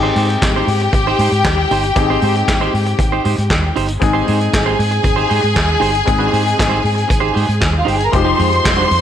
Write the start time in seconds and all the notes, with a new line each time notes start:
Already playing: C4 D#4 G4 G#4 G5
0.03 D#4 G4 C5
0.16 G#2 D#4 G4 C5, open hi-hat
0.30 muted clean electric guitar stroke, closed hi-hat
0.42 G#1, muted clean electric guitar stroke, kick, snare, clap, closed hi-hat
0.56 D#4 G4 C5
0.67 G#2, muted clean electric guitar stroke, open hi-hat
0.80 muted clean electric guitar stroke, closed hi-hat
0.93 G#1, muted clean electric guitar stroke, kick, closed hi-hat
1.07 D#4 G4 C5
1.19 G#2 D#4 G4 C5, open hi-hat
1.32 G#2, muted clean electric guitar stroke, closed hi-hat
1.44 D#2, muted clean electric guitar stroke, kick, snare, clap, closed hi-hat
1.58 muted clean electric guitar stroke
1.71 G1 D#4 G4 C5, open hi-hat
1.84 muted clean electric guitar stroke, closed hi-hat
1.95 G#1 C4 D#4 G4 G#4, muted clean electric guitar stroke, kick, closed hi-hat
2.10 D#4 G4 C5
2.22 G#2 D#4 G4 C5, open hi-hat
2.35 muted clean electric guitar stroke, closed hi-hat
2.48 G#1, muted clean electric guitar stroke, kick, snare, clap, closed hi-hat
2.61 D#4 G4 C5
2.74 G#2, muted clean electric guitar stroke, open hi-hat
2.86 muted clean electric guitar stroke, closed hi-hat
2.99 G#1, muted clean electric guitar stroke, kick, closed hi-hat
3.12 D#4 G4 C5
3.24 G#2 D#4 G4 C5, open hi-hat
3.37 G#2, muted clean electric guitar stroke, closed hi-hat
3.50 D#2, muted clean electric guitar stroke, kick, snare, clap, closed hi-hat
3.63 muted clean electric guitar stroke
3.76 G1 D#4 G4 C5, open hi-hat
3.88 muted clean electric guitar stroke, closed hi-hat
4.00 G#1 G#3 C4 D#4 G#4 G#5, muted clean electric guitar stroke, kick, closed hi-hat
4.13 D#4 G4 C5
4.27 G#2 D#4 G4 C5, open hi-hat
4.41 closed hi-hat
4.53 G#1, muted clean electric guitar stroke, kick, snare, clap, closed hi-hat
4.66 D#4 G4 C5
4.78 G#2, muted clean electric guitar stroke, open hi-hat
4.91 muted clean electric guitar stroke, closed hi-hat
5.03 G#1, muted clean electric guitar stroke, kick, closed hi-hat
5.16 D#4 G4 C5
5.29 G#2 D#4 G4 C5, open hi-hat
5.42 G#2, muted clean electric guitar stroke, closed hi-hat
5.55 D#2, muted clean electric guitar stroke, kick, snare, clap, closed hi-hat
5.68 muted clean electric guitar stroke
5.80 G1 D#4 G4 C5, open hi-hat
5.92 muted clean electric guitar stroke, closed hi-hat
6.06 G#1 G#3 C4 D#4 G#4, muted clean electric guitar stroke, kick, closed hi-hat
6.19 D#4 G4 C5
6.31 G#2 D#4 G4 C5, open hi-hat
6.45 muted clean electric guitar stroke, closed hi-hat
6.58 G#1, muted clean electric guitar stroke, kick, snare, clap, closed hi-hat
6.69 D#4 G4 C5
6.83 G#2, muted clean electric guitar stroke, open hi-hat
6.95 muted clean electric guitar stroke, closed hi-hat
7.08 G#1, muted clean electric guitar stroke, kick, closed hi-hat
7.20 D#4 G4 C5
7.33 G#2 D#4 G4 C5, open hi-hat
7.47 G#2, muted clean electric guitar stroke, closed hi-hat
7.61 D#2, muted clean electric guitar stroke, kick, snare, clap, closed hi-hat
7.73 muted clean electric guitar stroke
7.79 F4 F5
7.85 G1 D#4 G4 C5 G5, open hi-hat
7.96 G#4 G#5, muted clean electric guitar stroke
8.00 closed hi-hat
8.05 A#4 A#5
8.12 F1 F3 G#3 D#4 G4 C5 C6, muted clean electric guitar stroke, kick, closed hi-hat
8.25 G#3 D#4 G4
8.38 F2 G#3 D#4 G4, open hi-hat
8.51 muted clean electric guitar stroke, closed hi-hat
8.64 F1, muted clean electric guitar stroke, kick, snare, clap, closed hi-hat
8.77 G#3 D#4 G4
8.90 F2, muted clean electric guitar stroke, open hi-hat